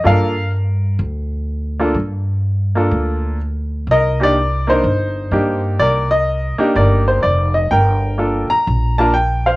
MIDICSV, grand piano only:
0, 0, Header, 1, 2, 480
1, 0, Start_track
1, 0, Key_signature, -2, "minor"
1, 0, Tempo, 478851
1, 42, Time_signature, 4, 2, 24, 8
1, 9586, End_track
2, 0, Start_track
2, 0, Title_t, "Grand piano"
2, 0, Program_c, 0, 0
2, 39, Note_on_c, 0, 58, 59
2, 47, Note_on_c, 0, 62, 53
2, 47, Note_on_c, 0, 65, 56
2, 56, Note_on_c, 0, 69, 60
2, 67, Note_on_c, 0, 77, 96
2, 90, Note_on_c, 0, 70, 64
2, 326, Note_off_c, 0, 58, 0
2, 331, Note_off_c, 0, 62, 0
2, 331, Note_off_c, 0, 65, 0
2, 335, Note_off_c, 0, 69, 0
2, 502, Note_off_c, 0, 77, 0
2, 986, Note_off_c, 0, 70, 0
2, 1799, Note_on_c, 0, 58, 64
2, 1799, Note_on_c, 0, 62, 61
2, 1806, Note_on_c, 0, 65, 63
2, 1812, Note_on_c, 0, 69, 69
2, 1945, Note_off_c, 0, 58, 0
2, 1946, Note_off_c, 0, 62, 0
2, 1949, Note_off_c, 0, 65, 0
2, 1952, Note_off_c, 0, 69, 0
2, 2759, Note_on_c, 0, 58, 58
2, 2770, Note_on_c, 0, 62, 54
2, 2772, Note_on_c, 0, 65, 53
2, 2775, Note_on_c, 0, 69, 63
2, 3369, Note_off_c, 0, 58, 0
2, 3375, Note_off_c, 0, 62, 0
2, 3376, Note_off_c, 0, 65, 0
2, 3377, Note_off_c, 0, 69, 0
2, 3919, Note_on_c, 0, 75, 102
2, 3920, Note_on_c, 0, 70, 71
2, 4198, Note_off_c, 0, 75, 0
2, 4206, Note_on_c, 0, 58, 60
2, 4213, Note_on_c, 0, 62, 55
2, 4219, Note_on_c, 0, 63, 56
2, 4223, Note_on_c, 0, 67, 62
2, 4241, Note_on_c, 0, 74, 99
2, 4349, Note_off_c, 0, 58, 0
2, 4353, Note_off_c, 0, 62, 0
2, 4356, Note_off_c, 0, 63, 0
2, 4358, Note_off_c, 0, 67, 0
2, 4669, Note_off_c, 0, 74, 0
2, 4682, Note_on_c, 0, 58, 65
2, 4684, Note_off_c, 0, 70, 0
2, 4689, Note_on_c, 0, 62, 60
2, 4692, Note_on_c, 0, 63, 59
2, 4699, Note_on_c, 0, 70, 68
2, 4707, Note_on_c, 0, 72, 90
2, 4709, Note_off_c, 0, 63, 0
2, 4724, Note_on_c, 0, 63, 50
2, 4828, Note_off_c, 0, 58, 0
2, 4831, Note_off_c, 0, 62, 0
2, 4836, Note_off_c, 0, 70, 0
2, 5328, Note_off_c, 0, 63, 0
2, 5331, Note_on_c, 0, 58, 62
2, 5334, Note_on_c, 0, 62, 54
2, 5343, Note_on_c, 0, 63, 52
2, 5346, Note_on_c, 0, 67, 70
2, 5614, Note_off_c, 0, 72, 0
2, 5810, Note_on_c, 0, 74, 96
2, 5833, Note_on_c, 0, 70, 63
2, 6062, Note_off_c, 0, 58, 0
2, 6063, Note_off_c, 0, 62, 0
2, 6067, Note_off_c, 0, 63, 0
2, 6069, Note_off_c, 0, 67, 0
2, 6103, Note_off_c, 0, 74, 0
2, 6123, Note_on_c, 0, 75, 99
2, 6569, Note_off_c, 0, 75, 0
2, 6599, Note_on_c, 0, 58, 75
2, 6604, Note_on_c, 0, 62, 66
2, 6608, Note_on_c, 0, 63, 66
2, 6614, Note_on_c, 0, 67, 77
2, 6738, Note_off_c, 0, 70, 0
2, 6779, Note_on_c, 0, 74, 78
2, 6805, Note_on_c, 0, 70, 53
2, 7067, Note_off_c, 0, 74, 0
2, 7093, Note_on_c, 0, 72, 78
2, 7210, Note_off_c, 0, 58, 0
2, 7212, Note_off_c, 0, 62, 0
2, 7214, Note_off_c, 0, 63, 0
2, 7217, Note_off_c, 0, 67, 0
2, 7243, Note_on_c, 0, 74, 83
2, 7254, Note_off_c, 0, 72, 0
2, 7538, Note_off_c, 0, 74, 0
2, 7560, Note_on_c, 0, 75, 82
2, 7704, Note_off_c, 0, 70, 0
2, 7727, Note_off_c, 0, 75, 0
2, 7727, Note_on_c, 0, 79, 98
2, 7743, Note_on_c, 0, 70, 74
2, 8197, Note_on_c, 0, 58, 52
2, 8198, Note_on_c, 0, 62, 48
2, 8204, Note_on_c, 0, 65, 50
2, 8211, Note_on_c, 0, 69, 60
2, 8486, Note_off_c, 0, 58, 0
2, 8486, Note_off_c, 0, 62, 0
2, 8489, Note_off_c, 0, 65, 0
2, 8493, Note_off_c, 0, 69, 0
2, 8520, Note_on_c, 0, 82, 107
2, 8546, Note_off_c, 0, 79, 0
2, 8652, Note_off_c, 0, 70, 0
2, 8966, Note_off_c, 0, 82, 0
2, 9004, Note_on_c, 0, 81, 91
2, 9011, Note_on_c, 0, 58, 70
2, 9014, Note_on_c, 0, 62, 61
2, 9020, Note_on_c, 0, 65, 60
2, 9026, Note_on_c, 0, 70, 70
2, 9151, Note_off_c, 0, 58, 0
2, 9153, Note_off_c, 0, 62, 0
2, 9153, Note_off_c, 0, 81, 0
2, 9155, Note_off_c, 0, 65, 0
2, 9159, Note_off_c, 0, 70, 0
2, 9159, Note_on_c, 0, 79, 92
2, 9486, Note_on_c, 0, 77, 76
2, 9488, Note_off_c, 0, 79, 0
2, 9495, Note_on_c, 0, 72, 61
2, 9586, Note_off_c, 0, 72, 0
2, 9586, Note_off_c, 0, 77, 0
2, 9586, End_track
0, 0, End_of_file